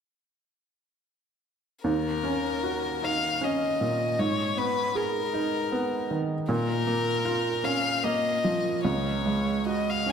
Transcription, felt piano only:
1.84 4.15 D#2 soft
2.24 2.87 C#4 soft
2.63 3.26 F#4 soft
3.02 3.65 D#4 soft
3.41 4.03 C#4 soft
3.81 4.19 A#2 soft
4.19 6.45 G#2 soft
4.57 5.19 B3 soft
4.95 5.57 G#4 soft
5.33 5.95 D#4 soft
5.72 6.33 B3 soft
6.11 6.49 D#3 soft
6.49 8.80 A#2 medium
6.87 7.49 A#3 soft
7.25 7.88 F4 soft
7.64 8.27 C#4 soft
8.04 8.68 A#3 soft
8.44 8.85 F3 soft
8.85 10.12 C#2 soft
9.26 9.91 G#3 soft
9.66 10.12 F#4 soft
10.06 10.12 C#4 soft

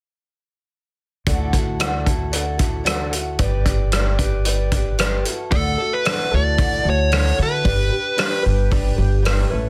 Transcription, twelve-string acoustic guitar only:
1.27 1.54 D3 medium
1.27 1.54 D4 medium
1.27 1.55 E4 medium
1.27 1.54 F#4 medium
1.27 1.53 A4 medium
1.54 1.80 E4 soft
1.54 1.80 F#4 soft
1.54 1.80 A4 medium
1.79 2.06 D3 medium
1.79 2.07 D4 medium
1.79 2.07 E4 medium
1.79 2.07 F#4 medium
1.79 2.05 A4 medium
2.06 2.33 E4 soft
2.06 2.32 F#4 soft
2.06 2.33 A4 medium
2.31 2.59 D4 soft
2.31 2.59 E4 medium
2.31 2.60 F#4 soft
2.31 2.57 A4 medium
2.58 2.84 E4 soft
2.58 2.84 F#4 soft
2.58 2.85 A4 soft
2.84 3.12 D3 medium
2.84 3.12 D4 medium
2.84 3.12 E4 medium
2.84 3.12 F#4 medium
2.84 3.10 A4 medium
3.11 3.39 E4 soft
3.11 3.39 F#4 soft
3.11 3.39 A4 soft
3.39 3.66 G3 medium
3.39 3.66 G4 medium
3.39 3.66 B4 medium
3.39 3.64 D5 medium
3.65 3.93 B4 soft
3.65 3.92 D5 soft
3.69 3.92 G4 soft
3.92 4.19 G3 medium
3.92 4.20 G4 medium
3.92 4.19 B4 medium
3.92 4.18 D5 medium
4.19 4.45 G4 soft
4.19 4.46 B4 medium
4.19 4.46 D5 medium
4.44 4.72 G3 soft
4.44 4.73 G4 medium
4.44 4.73 B4 medium
4.44 4.72 D5 medium
4.73 4.98 G4 soft
4.73 4.98 B4 soft
4.73 4.99 D5 medium
4.98 5.25 G3 medium
4.98 5.26 G4 medium
4.98 5.26 B4 medium
4.98 5.25 D5 medium
5.25 5.52 E4 soft
5.25 5.52 A4 soft
5.29 5.52 F#4 soft
5.51 5.79 D3 medium
5.51 5.79 D4 medium
5.51 5.79 E4 medium
5.51 5.79 F#4 medium
5.51 5.77 A4 medium
5.78 6.06 E4 soft
5.78 6.05 F#4 soft
5.78 6.05 A4 soft
6.05 6.32 D4 medium
6.05 6.32 E4 medium
6.05 6.32 F#4 medium
6.05 6.30 A4 medium
6.31 6.59 E4 soft
6.31 6.58 F#4 soft
6.31 6.58 A4 soft
6.57 6.85 D3 medium
6.57 6.85 D4 medium
6.57 6.84 E4 medium
6.57 6.85 F#4 medium
6.57 6.82 A4 medium
6.83 7.11 E4 soft
6.83 7.11 F#4 soft
6.83 7.11 A4 soft
7.11 7.38 D4 medium
7.11 7.38 E4 medium
7.11 7.38 F#4 medium
7.11 7.37 A4 medium
7.38 7.65 E4 soft
7.38 7.64 F#4 soft
7.38 7.65 A4 soft
7.63 7.91 G3 medium
7.63 7.92 D4 medium
7.63 7.91 G4 medium
7.63 7.89 B4 medium
7.90 8.16 D4 soft
7.90 8.17 G4 soft
7.90 8.18 B4 soft
8.16 8.44 G3 medium
8.16 8.44 D4 medium
8.16 8.43 G4 medium
8.16 8.42 B4 medium
8.43 8.70 D4 soft
8.43 8.71 G4 medium
8.43 8.70 B4 medium
8.71 8.98 G3 medium
8.71 8.98 D4 medium
8.71 8.97 G4 medium
8.71 8.95 B4 medium
8.96 9.23 D4 soft
8.96 9.24 G4 soft
8.96 9.24 B4 medium
9.22 9.50 G3 medium
9.22 9.51 D4 medium
9.22 9.51 G4 medium
9.22 9.49 B4 medium
9.50 9.69 A3 soft
9.50 9.69 C#4 soft
9.50 9.69 E4 soft
9.50 9.69 B4 medium

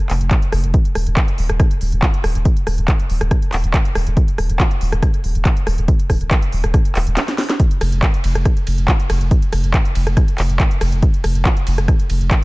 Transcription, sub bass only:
0.10 0.20 F1 loud
0.21 0.31 F1 medium
0.52 0.63 F1 loud
0.64 0.74 F1 medium
0.95 1.06 D#1 loud
1.07 1.17 D#1 medium
1.38 1.49 D#1 loud
1.49 1.59 D#1 medium
1.81 1.92 D#1 loud
1.92 2.02 D#1 medium
2.24 2.35 D#1 loud
2.35 2.45 D#1 medium
2.67 2.77 D#1 loud
2.78 2.88 D#1 medium
3.10 3.20 D#1 loud
3.21 3.31 D#1 medium
3.53 3.63 D#1 loud
3.64 3.74 D#1 medium
3.95 4.06 D#1 loud
4.07 4.17 D#1 medium
4.38 4.49 D#1 loud
4.49 4.59 D#1 medium
4.81 4.92 D#1 loud
4.92 5.02 D#1 medium
5.24 5.35 D#1 loud
5.35 5.45 D#1 medium
5.67 5.77 D#1 loud
5.78 5.88 D#1 medium
6.10 6.20 D#1 loud
6.21 6.31 D#1 medium
6.52 6.63 D#1 loud
6.64 6.74 D#1 medium
6.95 7.06 D#1 loud
7.07 7.17 D#1 medium
7.81 7.92 F1 loud
7.92 8.02 F1 medium
8.24 8.35 F1 loud
8.35 8.45 F1 medium
8.67 8.78 F1 loud
8.78 8.88 F1 medium
9.10 9.20 F1 loud
9.21 9.31 F1 medium
9.52 9.63 F1 loud
9.64 9.74 F1 medium
9.95 10.06 F1 loud
10.07 10.17 F1 medium
10.38 10.49 F1 loud
10.50 10.59 F1 medium
10.81 10.92 F1 loud
10.92 11.02 F1 medium
11.24 11.35 F1 loud
11.35 11.45 F1 medium
11.67 11.77 F1 loud
11.78 11.88 F1 medium
12.10 12.20 F1 loud
12.21 12.31 F1 medium

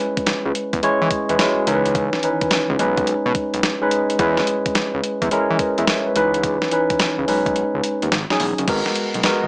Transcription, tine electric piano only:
0.00 0.78 G#3 medium
0.00 0.75 C#4 medium
0.00 0.76 E4 medium
0.00 0.76 B4 medium
0.83 1.24 G#3 loud
0.83 1.24 C#4 medium
0.83 1.24 E4 medium
0.83 1.24 C#5 loud
1.29 1.37 G#3 medium
1.29 1.38 C#4 medium
1.29 1.38 E4 medium
1.29 1.38 B4 medium
1.39 1.67 G#3 medium
1.39 1.66 C#4 medium
1.39 1.67 E4 medium
1.39 1.67 F#4 medium
1.67 2.19 E3 medium
1.67 2.19 C#4 medium
1.67 2.20 D#4 medium
1.67 1.76 A#4 medium
1.75 2.23 B4 loud
2.23 2.32 D#3 medium
2.23 2.78 C#4 medium
2.23 2.79 D#4 medium
2.23 2.79 B4 medium
2.30 2.82 E3 medium
2.79 3.69 G#3 medium
2.79 3.69 C#4 medium
2.79 3.69 D#4 medium
2.79 3.70 B4 medium
3.82 4.16 G#3 medium
3.82 4.17 C#4 medium
3.82 4.17 D#4 medium
3.82 4.17 B4 loud
4.19 5.24 G#3 medium
4.19 5.24 C#4 medium
4.19 5.24 E4 medium
4.19 5.24 B4 medium
5.31 5.72 G#3 medium
5.31 5.73 C#4 medium
5.31 5.73 E4 medium
5.31 5.60 A#4 loud
5.60 5.77 B4 medium
5.79 5.87 E5 medium
5.88 6.05 C#5 medium
6.07 6.16 B4 medium
6.16 6.68 E3 medium
6.16 6.68 C#4 medium
6.16 6.68 D#4 medium
6.16 6.69 B4 loud
6.72 7.28 E3 medium
6.72 7.27 C#4 medium
6.72 7.27 D#4 medium
6.72 7.28 B4 medium
7.28 8.06 G#3 medium
7.28 8.06 C#4 medium
7.28 8.07 D#4 medium
7.28 8.07 B4 medium
8.30 8.65 F#3 medium
8.30 8.65 C#4 medium
8.30 8.65 D#4 medium
8.30 8.66 G#4 loud
8.68 9.20 G#3 medium
8.68 9.20 B3 medium
8.68 9.21 F#4 medium
8.68 9.21 A#4 loud
9.24 9.47 G#3 medium
9.24 9.47 B3 medium
9.24 9.47 F#4 medium
9.24 9.47 A#4 medium

